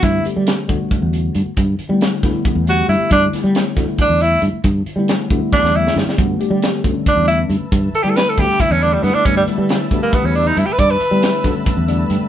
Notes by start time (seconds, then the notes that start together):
0.02 G2 D3 G3 A3 B3 E4, kick, closed hi-hat
0.24 D3 G3 A3 B3 G4, muted fretless electric bass stroke, closed hi-hat
0.37 G3
0.47 snare, closed hi-hat
0.67 D2 D3 G3 A3 B3 F#4, kick, closed hi-hat
0.91 muted fretless electric bass stroke, kick, closed hi-hat
1.02 E2
1.13 closed hi-hat
1.35 G2, closed hi-hat
1.46 muted fretless electric bass stroke
1.57 G2, kick, closed hi-hat
1.79 muted fretless electric bass stroke, closed hi-hat
1.89 D3 G3 A3 B3 E4
2.01 snare, closed hi-hat
2.23 D2 D3 G3 A3 B3 E4, kick, snare, closed hi-hat
2.45 muted fretless electric bass stroke, kick, closed hi-hat
2.55 E2
2.67 D3 G3 A3 B3 F#4 G4, closed hi-hat
2.88 G2 E4, closed hi-hat
3.00 muted fretless electric bass stroke
3.10 G2 D3 G3 A3 B3 D4 E4, kick, closed hi-hat
3.33 D3 G3 A3 B3 E4, muted fretless electric bass stroke, snare, closed hi-hat
3.44 G3
3.55 snare, closed hi-hat
3.76 D2 D3 G3 A3 B3 E4, kick, snare, closed hi-hat
3.98 D4, muted fretless electric bass stroke, kick, closed hi-hat
4.09 E2
4.20 E4, closed hi-hat
4.42 G2, closed hi-hat
4.53 muted fretless electric bass stroke
4.64 G2, kick, closed hi-hat
4.86 muted fretless electric bass stroke, closed hi-hat
4.96 D3 G3 A3 B3 E4
5.08 snare, closed hi-hat
5.29 D2 D3 G3 A3 B3 E4, kick, closed hi-hat
5.53 D4, muted fretless electric bass stroke, kick, snare
5.63 E2, snare
5.73 D3 G3 A3 B3 E4
5.87 snare
5.96 G2, snare
6.06 muted fretless electric bass stroke, snare
6.17 G2 D3 G3 A3 B3 F#4 B4 E5 A5 E6, kick, closed hi-hat
6.39 D3 G3 A3 B3 G4, muted fretless electric bass stroke, closed hi-hat
6.50 G3
6.62 snare, closed hi-hat
6.84 D2 D3 G3 A3 B3 C#4, kick, closed hi-hat
7.06 D4, muted fretless electric bass stroke, kick, closed hi-hat
7.16 E2
7.28 E4, closed hi-hat
7.49 G2, closed hi-hat
7.60 muted fretless electric bass stroke
7.72 G2, kick, closed hi-hat
7.93 A4, muted fretless electric bass stroke, closed hi-hat
8.03 D3 G3 A3 B3 E4 G4
8.10 A4
8.16 B4, snare, closed hi-hat
8.29 A4
8.37 D2 D3 G3 A3 B3 D4 G4, kick, closed hi-hat
8.59 E4, muted fretless electric bass stroke, kick, closed hi-hat
8.70 E2 C#4
8.81 D3 G3 A3 B3 D4 E4, closed hi-hat
8.93 G3
9.03 G2 B3, snare, closed hi-hat
9.15 D4, muted fretless electric bass stroke
9.25 G2 D3 G3 A3 B3 C#4 D4, kick, closed hi-hat
9.37 G3
9.46 D3 G3 A3 B3 E4, muted fretless electric bass stroke, closed hi-hat
9.58 G3
9.69 snare, closed hi-hat
9.90 D2 D3 G3 A3 B3 G4, kick, closed hi-hat
10.03 A#3
10.13 B3, muted fretless electric bass stroke, kick, closed hi-hat
10.23 E2 C#4
10.35 D4, closed hi-hat
10.47 D#4
10.57 G2 E4, closed hi-hat
10.66 G4, muted fretless electric bass stroke
10.72 B4
10.78 G2 D5, kick, closed hi-hat
10.91 B4
11.00 muted fretless electric bass stroke, closed hi-hat
11.11 D3 G3 A3 B3 E4
11.22 snare, closed hi-hat
11.44 D2 D3 G3 A3 B3 C#4, kick, snare, closed hi-hat
11.66 muted fretless electric bass stroke, kick, closed hi-hat
11.77 E2
11.87 D3 G3 A3 B3 D4 D5, closed hi-hat
12.10 G2 G5, closed hi-hat
12.21 muted fretless electric bass stroke